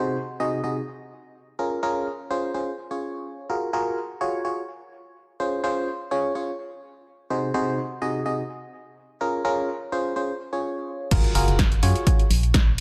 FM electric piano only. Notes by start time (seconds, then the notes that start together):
Already playing: C3 D#4 F#4 G#4 C5
0.40 C3 D#4 F#4 G#4 D#5
0.64 C3 D#4 F#4 G#4 D#5
1.59 C#4 F4 G#4 A#4
1.83 C#4 F4 G#4 A#4
2.30 C#4 F4 G#4 C5
2.54 C#4 F4 G#4 C5
2.91 C#4 F4 G#4 C#5
3.49 F4 F#4 G#4 A#4
3.73 F4 F#4 G#4 A#4
4.21 F4 F#4 G#4 C#5
4.45 F4 F#4 G#4 C#5
5.40 C#4 F4 G#4 C5
5.64 C#4 F4 G#4 C5
6.11 C#4 F4 G#4 C#5
6.35 C#4 F4 G#4 C#5
7.30 C3 D#4 F#4 G#4 C5
7.54 C3 D#4 F#4 G#4 C5
8.02 C3 D#4 F#4 G#4 D#5
8.26 C3 D#4 F#4 G#4 D#5
9.21 C#4 F4 G#4 A#4
9.45 C#4 F4 G#4 A#4
9.92 C#4 F4 G#4 C5
10.16 C#4 F4 G#4 C5
10.53 C#4 F4 G#4 C#5
11.11 F4 F#4 G#4 A#4
11.35 F4 F#4 G#4 A#4
11.83 F4 F#4 G#4 C#5
12.07 F4 F#4 G#4 C#5